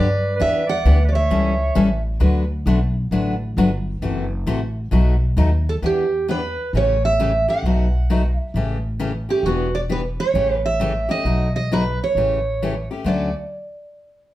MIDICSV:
0, 0, Header, 1, 5, 480
1, 0, Start_track
1, 0, Key_signature, 2, "major"
1, 0, Tempo, 451807
1, 433, Time_signature, 4, 2, 24, 8
1, 15236, End_track
2, 0, Start_track
2, 0, Title_t, "Steel-string acoustic guitar"
2, 0, Program_c, 0, 25
2, 0, Note_on_c, 0, 74, 100
2, 399, Note_off_c, 0, 74, 0
2, 440, Note_on_c, 0, 76, 102
2, 732, Note_off_c, 0, 76, 0
2, 737, Note_on_c, 0, 78, 117
2, 1096, Note_off_c, 0, 78, 0
2, 1154, Note_on_c, 0, 74, 61
2, 1219, Note_off_c, 0, 74, 0
2, 1223, Note_on_c, 0, 76, 96
2, 2139, Note_off_c, 0, 76, 0
2, 6047, Note_on_c, 0, 69, 84
2, 6100, Note_off_c, 0, 69, 0
2, 6223, Note_on_c, 0, 67, 83
2, 6654, Note_off_c, 0, 67, 0
2, 6699, Note_on_c, 0, 71, 90
2, 7132, Note_off_c, 0, 71, 0
2, 7192, Note_on_c, 0, 73, 94
2, 7485, Note_off_c, 0, 73, 0
2, 7489, Note_on_c, 0, 76, 102
2, 7920, Note_off_c, 0, 76, 0
2, 7967, Note_on_c, 0, 78, 84
2, 8902, Note_off_c, 0, 78, 0
2, 8902, Note_on_c, 0, 76, 84
2, 9349, Note_off_c, 0, 76, 0
2, 9883, Note_on_c, 0, 67, 78
2, 10048, Note_on_c, 0, 66, 78
2, 10049, Note_off_c, 0, 67, 0
2, 10354, Note_off_c, 0, 66, 0
2, 10356, Note_on_c, 0, 74, 96
2, 10409, Note_off_c, 0, 74, 0
2, 10538, Note_on_c, 0, 71, 83
2, 10617, Note_off_c, 0, 71, 0
2, 10835, Note_on_c, 0, 73, 91
2, 11273, Note_off_c, 0, 73, 0
2, 11321, Note_on_c, 0, 76, 101
2, 11798, Note_off_c, 0, 76, 0
2, 11802, Note_on_c, 0, 75, 95
2, 12236, Note_off_c, 0, 75, 0
2, 12280, Note_on_c, 0, 75, 93
2, 12431, Note_off_c, 0, 75, 0
2, 12463, Note_on_c, 0, 71, 83
2, 12732, Note_off_c, 0, 71, 0
2, 12786, Note_on_c, 0, 73, 83
2, 13679, Note_off_c, 0, 73, 0
2, 13895, Note_on_c, 0, 74, 73
2, 14168, Note_off_c, 0, 74, 0
2, 15236, End_track
3, 0, Start_track
3, 0, Title_t, "Clarinet"
3, 0, Program_c, 1, 71
3, 0, Note_on_c, 1, 71, 81
3, 376, Note_off_c, 1, 71, 0
3, 384, Note_on_c, 1, 71, 88
3, 691, Note_off_c, 1, 71, 0
3, 712, Note_on_c, 1, 74, 99
3, 1083, Note_off_c, 1, 74, 0
3, 1114, Note_on_c, 1, 71, 64
3, 1184, Note_off_c, 1, 71, 0
3, 1191, Note_on_c, 1, 73, 88
3, 2123, Note_off_c, 1, 73, 0
3, 15236, End_track
4, 0, Start_track
4, 0, Title_t, "Steel-string acoustic guitar"
4, 0, Program_c, 2, 25
4, 420, Note_on_c, 2, 52, 68
4, 421, Note_on_c, 2, 59, 70
4, 428, Note_on_c, 2, 62, 83
4, 429, Note_on_c, 2, 67, 77
4, 657, Note_off_c, 2, 52, 0
4, 658, Note_off_c, 2, 59, 0
4, 661, Note_off_c, 2, 62, 0
4, 662, Note_off_c, 2, 67, 0
4, 907, Note_on_c, 2, 52, 81
4, 912, Note_on_c, 2, 59, 89
4, 914, Note_on_c, 2, 62, 86
4, 917, Note_on_c, 2, 67, 91
4, 1032, Note_off_c, 2, 52, 0
4, 1035, Note_off_c, 2, 59, 0
4, 1036, Note_off_c, 2, 62, 0
4, 1037, Note_off_c, 2, 67, 0
4, 1386, Note_on_c, 2, 55, 70
4, 1390, Note_on_c, 2, 52, 72
4, 1392, Note_on_c, 2, 61, 74
4, 1394, Note_on_c, 2, 64, 76
4, 1399, Note_on_c, 2, 69, 84
4, 1620, Note_off_c, 2, 55, 0
4, 1622, Note_off_c, 2, 52, 0
4, 1623, Note_off_c, 2, 61, 0
4, 1625, Note_off_c, 2, 64, 0
4, 1627, Note_off_c, 2, 69, 0
4, 1862, Note_on_c, 2, 52, 93
4, 1862, Note_on_c, 2, 55, 100
4, 1867, Note_on_c, 2, 61, 91
4, 1870, Note_on_c, 2, 64, 101
4, 1871, Note_on_c, 2, 69, 107
4, 1990, Note_off_c, 2, 52, 0
4, 1990, Note_off_c, 2, 55, 0
4, 1992, Note_off_c, 2, 61, 0
4, 1994, Note_off_c, 2, 64, 0
4, 1994, Note_off_c, 2, 69, 0
4, 2336, Note_on_c, 2, 50, 78
4, 2338, Note_on_c, 2, 57, 79
4, 2339, Note_on_c, 2, 54, 69
4, 2343, Note_on_c, 2, 62, 78
4, 2346, Note_on_c, 2, 71, 81
4, 2348, Note_on_c, 2, 66, 81
4, 2575, Note_off_c, 2, 50, 0
4, 2576, Note_off_c, 2, 57, 0
4, 2577, Note_off_c, 2, 54, 0
4, 2579, Note_off_c, 2, 62, 0
4, 2580, Note_off_c, 2, 71, 0
4, 2581, Note_off_c, 2, 66, 0
4, 2831, Note_on_c, 2, 50, 75
4, 2832, Note_on_c, 2, 54, 85
4, 2834, Note_on_c, 2, 57, 96
4, 2837, Note_on_c, 2, 71, 94
4, 2838, Note_on_c, 2, 62, 98
4, 2839, Note_on_c, 2, 66, 95
4, 2954, Note_off_c, 2, 50, 0
4, 2954, Note_off_c, 2, 54, 0
4, 2956, Note_off_c, 2, 57, 0
4, 2957, Note_off_c, 2, 71, 0
4, 2958, Note_off_c, 2, 62, 0
4, 2958, Note_off_c, 2, 66, 0
4, 3315, Note_on_c, 2, 50, 69
4, 3315, Note_on_c, 2, 54, 78
4, 3316, Note_on_c, 2, 57, 79
4, 3321, Note_on_c, 2, 62, 79
4, 3324, Note_on_c, 2, 71, 79
4, 3326, Note_on_c, 2, 66, 72
4, 3544, Note_off_c, 2, 50, 0
4, 3544, Note_off_c, 2, 54, 0
4, 3545, Note_off_c, 2, 57, 0
4, 3547, Note_off_c, 2, 62, 0
4, 3549, Note_off_c, 2, 71, 0
4, 3550, Note_off_c, 2, 66, 0
4, 3799, Note_on_c, 2, 50, 95
4, 3800, Note_on_c, 2, 57, 85
4, 3802, Note_on_c, 2, 54, 81
4, 3805, Note_on_c, 2, 66, 101
4, 3805, Note_on_c, 2, 71, 104
4, 3806, Note_on_c, 2, 62, 91
4, 3918, Note_off_c, 2, 50, 0
4, 3918, Note_off_c, 2, 57, 0
4, 3919, Note_off_c, 2, 54, 0
4, 3921, Note_off_c, 2, 62, 0
4, 3921, Note_off_c, 2, 66, 0
4, 3921, Note_off_c, 2, 71, 0
4, 4272, Note_on_c, 2, 52, 76
4, 4274, Note_on_c, 2, 48, 69
4, 4278, Note_on_c, 2, 57, 80
4, 4279, Note_on_c, 2, 64, 79
4, 4286, Note_on_c, 2, 66, 77
4, 4503, Note_off_c, 2, 48, 0
4, 4503, Note_off_c, 2, 52, 0
4, 4505, Note_off_c, 2, 57, 0
4, 4506, Note_off_c, 2, 64, 0
4, 4510, Note_off_c, 2, 66, 0
4, 4745, Note_on_c, 2, 48, 84
4, 4751, Note_on_c, 2, 52, 93
4, 4752, Note_on_c, 2, 57, 99
4, 4754, Note_on_c, 2, 64, 103
4, 4762, Note_on_c, 2, 66, 90
4, 4870, Note_off_c, 2, 48, 0
4, 4873, Note_off_c, 2, 52, 0
4, 4874, Note_off_c, 2, 57, 0
4, 4875, Note_off_c, 2, 64, 0
4, 4879, Note_off_c, 2, 66, 0
4, 5218, Note_on_c, 2, 47, 68
4, 5226, Note_on_c, 2, 57, 80
4, 5227, Note_on_c, 2, 54, 75
4, 5233, Note_on_c, 2, 63, 84
4, 5236, Note_on_c, 2, 66, 87
4, 5455, Note_off_c, 2, 47, 0
4, 5459, Note_off_c, 2, 57, 0
4, 5460, Note_off_c, 2, 54, 0
4, 5463, Note_off_c, 2, 63, 0
4, 5464, Note_off_c, 2, 66, 0
4, 5702, Note_on_c, 2, 47, 84
4, 5712, Note_on_c, 2, 54, 88
4, 5712, Note_on_c, 2, 63, 95
4, 5713, Note_on_c, 2, 57, 97
4, 5713, Note_on_c, 2, 66, 97
4, 5828, Note_off_c, 2, 47, 0
4, 5833, Note_off_c, 2, 54, 0
4, 5834, Note_off_c, 2, 57, 0
4, 5834, Note_off_c, 2, 63, 0
4, 5834, Note_off_c, 2, 66, 0
4, 6188, Note_on_c, 2, 52, 64
4, 6191, Note_on_c, 2, 59, 64
4, 6194, Note_on_c, 2, 62, 76
4, 6203, Note_on_c, 2, 67, 76
4, 6420, Note_off_c, 2, 52, 0
4, 6421, Note_off_c, 2, 59, 0
4, 6423, Note_off_c, 2, 62, 0
4, 6428, Note_off_c, 2, 67, 0
4, 6676, Note_on_c, 2, 52, 84
4, 6678, Note_on_c, 2, 59, 85
4, 6682, Note_on_c, 2, 62, 82
4, 6685, Note_on_c, 2, 67, 84
4, 6795, Note_off_c, 2, 52, 0
4, 6796, Note_off_c, 2, 59, 0
4, 6799, Note_off_c, 2, 62, 0
4, 6800, Note_off_c, 2, 67, 0
4, 7167, Note_on_c, 2, 49, 57
4, 7167, Note_on_c, 2, 52, 64
4, 7174, Note_on_c, 2, 61, 75
4, 7176, Note_on_c, 2, 67, 65
4, 7178, Note_on_c, 2, 57, 69
4, 7389, Note_off_c, 2, 49, 0
4, 7389, Note_off_c, 2, 52, 0
4, 7393, Note_off_c, 2, 61, 0
4, 7394, Note_off_c, 2, 67, 0
4, 7395, Note_off_c, 2, 57, 0
4, 7645, Note_on_c, 2, 49, 83
4, 7647, Note_on_c, 2, 57, 94
4, 7649, Note_on_c, 2, 52, 80
4, 7654, Note_on_c, 2, 67, 89
4, 7656, Note_on_c, 2, 61, 96
4, 7760, Note_off_c, 2, 49, 0
4, 7761, Note_off_c, 2, 57, 0
4, 7762, Note_off_c, 2, 52, 0
4, 7764, Note_off_c, 2, 67, 0
4, 7765, Note_off_c, 2, 61, 0
4, 7948, Note_on_c, 2, 61, 54
4, 7951, Note_on_c, 2, 67, 66
4, 7961, Note_on_c, 2, 57, 54
4, 8109, Note_off_c, 2, 61, 0
4, 8111, Note_off_c, 2, 67, 0
4, 8116, Note_off_c, 2, 57, 0
4, 8133, Note_on_c, 2, 54, 72
4, 8135, Note_on_c, 2, 47, 68
4, 8140, Note_on_c, 2, 66, 63
4, 8141, Note_on_c, 2, 63, 68
4, 8142, Note_on_c, 2, 57, 69
4, 8352, Note_off_c, 2, 54, 0
4, 8353, Note_off_c, 2, 47, 0
4, 8356, Note_off_c, 2, 63, 0
4, 8356, Note_off_c, 2, 66, 0
4, 8357, Note_off_c, 2, 57, 0
4, 8604, Note_on_c, 2, 47, 71
4, 8609, Note_on_c, 2, 54, 83
4, 8609, Note_on_c, 2, 57, 84
4, 8616, Note_on_c, 2, 63, 90
4, 8619, Note_on_c, 2, 66, 91
4, 8719, Note_off_c, 2, 47, 0
4, 8721, Note_off_c, 2, 57, 0
4, 8722, Note_off_c, 2, 54, 0
4, 8725, Note_off_c, 2, 63, 0
4, 8727, Note_off_c, 2, 66, 0
4, 9089, Note_on_c, 2, 49, 70
4, 9089, Note_on_c, 2, 52, 70
4, 9098, Note_on_c, 2, 57, 66
4, 9103, Note_on_c, 2, 61, 73
4, 9105, Note_on_c, 2, 67, 68
4, 9310, Note_off_c, 2, 49, 0
4, 9310, Note_off_c, 2, 52, 0
4, 9315, Note_off_c, 2, 57, 0
4, 9317, Note_off_c, 2, 61, 0
4, 9318, Note_off_c, 2, 67, 0
4, 9556, Note_on_c, 2, 49, 84
4, 9560, Note_on_c, 2, 57, 86
4, 9561, Note_on_c, 2, 52, 82
4, 9561, Note_on_c, 2, 67, 88
4, 9569, Note_on_c, 2, 61, 89
4, 9675, Note_off_c, 2, 49, 0
4, 9677, Note_off_c, 2, 57, 0
4, 9678, Note_off_c, 2, 52, 0
4, 9678, Note_off_c, 2, 67, 0
4, 9682, Note_off_c, 2, 61, 0
4, 9868, Note_on_c, 2, 67, 60
4, 9882, Note_on_c, 2, 61, 55
4, 9884, Note_on_c, 2, 57, 53
4, 10029, Note_off_c, 2, 67, 0
4, 10036, Note_off_c, 2, 61, 0
4, 10037, Note_off_c, 2, 57, 0
4, 10051, Note_on_c, 2, 52, 70
4, 10061, Note_on_c, 2, 59, 62
4, 10063, Note_on_c, 2, 62, 65
4, 10066, Note_on_c, 2, 67, 70
4, 10272, Note_off_c, 2, 52, 0
4, 10276, Note_off_c, 2, 59, 0
4, 10277, Note_off_c, 2, 62, 0
4, 10279, Note_off_c, 2, 67, 0
4, 10512, Note_on_c, 2, 52, 82
4, 10515, Note_on_c, 2, 59, 77
4, 10516, Note_on_c, 2, 67, 83
4, 10519, Note_on_c, 2, 62, 80
4, 10633, Note_off_c, 2, 52, 0
4, 10635, Note_off_c, 2, 59, 0
4, 10635, Note_off_c, 2, 67, 0
4, 10637, Note_off_c, 2, 62, 0
4, 10994, Note_on_c, 2, 49, 72
4, 10996, Note_on_c, 2, 52, 63
4, 10996, Note_on_c, 2, 57, 69
4, 10997, Note_on_c, 2, 61, 64
4, 11001, Note_on_c, 2, 67, 79
4, 11223, Note_off_c, 2, 49, 0
4, 11224, Note_off_c, 2, 52, 0
4, 11224, Note_off_c, 2, 57, 0
4, 11224, Note_off_c, 2, 61, 0
4, 11226, Note_off_c, 2, 67, 0
4, 11471, Note_on_c, 2, 49, 77
4, 11482, Note_on_c, 2, 57, 98
4, 11482, Note_on_c, 2, 67, 96
4, 11484, Note_on_c, 2, 52, 82
4, 11485, Note_on_c, 2, 61, 92
4, 11593, Note_off_c, 2, 49, 0
4, 11598, Note_off_c, 2, 57, 0
4, 11598, Note_off_c, 2, 67, 0
4, 11599, Note_off_c, 2, 52, 0
4, 11600, Note_off_c, 2, 61, 0
4, 11779, Note_on_c, 2, 67, 65
4, 11785, Note_on_c, 2, 61, 57
4, 11795, Note_on_c, 2, 57, 50
4, 11945, Note_off_c, 2, 67, 0
4, 11948, Note_off_c, 2, 57, 0
4, 11948, Note_off_c, 2, 61, 0
4, 11954, Note_on_c, 2, 47, 70
4, 11958, Note_on_c, 2, 63, 72
4, 11961, Note_on_c, 2, 57, 60
4, 11962, Note_on_c, 2, 54, 62
4, 11962, Note_on_c, 2, 66, 61
4, 12183, Note_off_c, 2, 47, 0
4, 12185, Note_off_c, 2, 63, 0
4, 12186, Note_off_c, 2, 57, 0
4, 12186, Note_off_c, 2, 66, 0
4, 12187, Note_off_c, 2, 54, 0
4, 12447, Note_on_c, 2, 47, 78
4, 12456, Note_on_c, 2, 54, 82
4, 12456, Note_on_c, 2, 63, 82
4, 12457, Note_on_c, 2, 57, 85
4, 12460, Note_on_c, 2, 66, 86
4, 12561, Note_off_c, 2, 47, 0
4, 12565, Note_off_c, 2, 54, 0
4, 12565, Note_off_c, 2, 63, 0
4, 12566, Note_off_c, 2, 57, 0
4, 12567, Note_off_c, 2, 66, 0
4, 12929, Note_on_c, 2, 49, 61
4, 12931, Note_on_c, 2, 52, 65
4, 12937, Note_on_c, 2, 57, 63
4, 12938, Note_on_c, 2, 61, 67
4, 12938, Note_on_c, 2, 67, 72
4, 13151, Note_off_c, 2, 49, 0
4, 13151, Note_off_c, 2, 52, 0
4, 13154, Note_off_c, 2, 57, 0
4, 13155, Note_off_c, 2, 61, 0
4, 13155, Note_off_c, 2, 67, 0
4, 13412, Note_on_c, 2, 52, 74
4, 13414, Note_on_c, 2, 49, 79
4, 13418, Note_on_c, 2, 57, 88
4, 13419, Note_on_c, 2, 61, 85
4, 13421, Note_on_c, 2, 67, 87
4, 13523, Note_off_c, 2, 52, 0
4, 13524, Note_off_c, 2, 49, 0
4, 13526, Note_off_c, 2, 57, 0
4, 13527, Note_off_c, 2, 61, 0
4, 13528, Note_off_c, 2, 67, 0
4, 13713, Note_on_c, 2, 67, 57
4, 13717, Note_on_c, 2, 61, 49
4, 13722, Note_on_c, 2, 57, 48
4, 13859, Note_on_c, 2, 50, 72
4, 13861, Note_off_c, 2, 57, 0
4, 13861, Note_off_c, 2, 61, 0
4, 13872, Note_off_c, 2, 67, 0
4, 13872, Note_on_c, 2, 54, 72
4, 13874, Note_on_c, 2, 57, 84
4, 13874, Note_on_c, 2, 61, 79
4, 13876, Note_on_c, 2, 66, 90
4, 14109, Note_off_c, 2, 50, 0
4, 14116, Note_off_c, 2, 54, 0
4, 14117, Note_off_c, 2, 57, 0
4, 14117, Note_off_c, 2, 61, 0
4, 14118, Note_off_c, 2, 66, 0
4, 15236, End_track
5, 0, Start_track
5, 0, Title_t, "Upright bass"
5, 0, Program_c, 3, 32
5, 0, Note_on_c, 3, 43, 89
5, 422, Note_off_c, 3, 43, 0
5, 434, Note_on_c, 3, 40, 81
5, 899, Note_off_c, 3, 40, 0
5, 906, Note_on_c, 3, 38, 93
5, 1375, Note_off_c, 3, 38, 0
5, 1389, Note_on_c, 3, 37, 84
5, 1857, Note_off_c, 3, 37, 0
5, 1867, Note_on_c, 3, 33, 98
5, 2336, Note_off_c, 3, 33, 0
5, 2342, Note_on_c, 3, 38, 84
5, 2813, Note_off_c, 3, 38, 0
5, 2823, Note_on_c, 3, 35, 98
5, 3293, Note_off_c, 3, 35, 0
5, 3305, Note_on_c, 3, 33, 89
5, 3774, Note_off_c, 3, 33, 0
5, 3790, Note_on_c, 3, 31, 95
5, 4256, Note_off_c, 3, 31, 0
5, 4269, Note_on_c, 3, 30, 86
5, 4736, Note_off_c, 3, 30, 0
5, 4744, Note_on_c, 3, 33, 94
5, 5213, Note_off_c, 3, 33, 0
5, 5226, Note_on_c, 3, 35, 88
5, 5694, Note_off_c, 3, 35, 0
5, 5704, Note_on_c, 3, 39, 94
5, 6173, Note_off_c, 3, 39, 0
5, 6187, Note_on_c, 3, 40, 82
5, 6956, Note_off_c, 3, 40, 0
5, 7152, Note_on_c, 3, 33, 88
5, 7919, Note_off_c, 3, 33, 0
5, 8101, Note_on_c, 3, 35, 76
5, 8873, Note_off_c, 3, 35, 0
5, 9073, Note_on_c, 3, 33, 86
5, 9840, Note_off_c, 3, 33, 0
5, 10018, Note_on_c, 3, 28, 84
5, 10791, Note_off_c, 3, 28, 0
5, 10983, Note_on_c, 3, 33, 82
5, 11754, Note_off_c, 3, 33, 0
5, 11946, Note_on_c, 3, 35, 82
5, 12716, Note_off_c, 3, 35, 0
5, 12907, Note_on_c, 3, 33, 86
5, 13676, Note_off_c, 3, 33, 0
5, 13862, Note_on_c, 3, 38, 74
5, 14151, Note_off_c, 3, 38, 0
5, 15236, End_track
0, 0, End_of_file